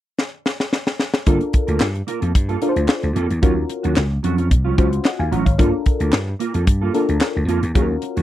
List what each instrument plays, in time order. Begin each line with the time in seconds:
0.19 snare
0.46 snare
0.60 snare
0.73 snare
0.87 snare
1.00 snare
1.14 snare
1.26 slap bass G1, clean electric guitar A#3 F4 A4, fm electric piano D4 F4 A4 A#4, kick, closed hi-hat
1.41 muted clean electric guitar stroke, closed hi-hat
1.53 muted clean electric guitar stroke, kick, closed hi-hat
1.67 slap bass D2, clean electric guitar A#3 F4 A#4, closed hi-hat
1.80 slap bass G2, muted clean electric guitar stroke, snare, clap
1.95 muted clean electric guitar stroke, closed hi-hat
2.07 clean electric guitar A#3 F4 A#4, closed hi-hat
2.21 slap bass F2, clean electric guitar A#3 F4 A4, closed hi-hat
2.35 slap bass G2, kick, closed hi-hat
2.49 clean electric guitar A#3 F4 A4, closed hi-hat
2.61 clean electric guitar A#3 F4 A4, fm electric piano D4 F4 A4 A#4, closed hi-hat
2.69 fm electric piano C5
2.76 slap bass D2, closed hi-hat
2.88 snare, clap
3.02 slap bass D2, muted clean electric guitar stroke, closed hi-hat
3.15 slap bass F2, clean electric guitar A#3 F4 A4, closed hi-hat
3.29 slap bass E2, muted clean electric guitar stroke, closed hi-hat
3.42 slap bass D#2, clean electric guitar F#3 C#4 F4, fm electric piano C#4 F4 F#4 A#4, kick, closed hi-hat
3.56 muted clean electric guitar stroke
3.69 muted clean electric guitar stroke, closed hi-hat
3.83 slap bass D#2, clean electric guitar F#3 C#4 F#4, closed hi-hat
3.96 slap bass C#2, muted clean electric guitar stroke, snare, clap
4.11 muted clean electric guitar stroke
4.23 slap bass F2, clean electric guitar F#3 C#4 F#4, closed hi-hat
4.38 clean electric guitar F#3 C#4 F4, closed hi-hat
4.51 slap bass C2, muted clean electric guitar stroke, kick, closed hi-hat
4.64 clean electric guitar F#3 C#4 F4
4.77 slap bass C#2, clean electric guitar F#3 C#4 F4, fm electric piano C#4 F4 F#4 C5, kick, closed hi-hat
4.92 muted clean electric guitar stroke, closed hi-hat
5.05 fm electric piano D#5 F#5, snare, clap
5.19 slap bass D#2, fm electric piano F5 G#5, muted clean electric guitar stroke
5.31 slap bass A1, clean electric guitar F#3 C#4 F4, fm electric piano F#5 A#5, closed hi-hat
5.45 slap bass G#1, fm electric piano C#5 F5, muted clean electric guitar stroke, kick, closed hi-hat
5.58 slap bass G1, clean electric guitar A#3 F4 A4, fm electric piano D4 F4 A4 A#4, kick, closed hi-hat
5.73 muted clean electric guitar stroke
5.86 muted clean electric guitar stroke, kick, closed hi-hat
6.00 slap bass D2, clean electric guitar A#3 F4 A#4, closed hi-hat
6.12 slap bass G2, muted clean electric guitar stroke, snare, clap
6.28 muted clean electric guitar stroke
6.39 clean electric guitar A#3 F4 A#4, closed hi-hat
6.54 slap bass F2, clean electric guitar A#3 F4 A4, closed hi-hat
6.67 slap bass G2, muted clean electric guitar stroke, kick, closed hi-hat
6.81 clean electric guitar A#3 F4 A4
6.94 clean electric guitar A#3 F4 A4, fm electric piano D4 F4 A4 A#4, closed hi-hat
7.09 slap bass D2, closed hi-hat
7.21 snare, clap
7.35 slap bass D2, muted clean electric guitar stroke
7.48 slap bass F2, clean electric guitar A#3 F4 A4, closed hi-hat
7.63 slap bass E2, muted clean electric guitar stroke, closed hi-hat
7.75 slap bass D#2, clean electric guitar F#3 C#4 F4, fm electric piano C#4 F4 F#4 G#4, kick, closed hi-hat
7.82 fm electric piano A#4
7.89 muted clean electric guitar stroke
8.02 muted clean electric guitar stroke, closed hi-hat
8.16 slap bass D#2, clean electric guitar F#3 C#4 F#4, closed hi-hat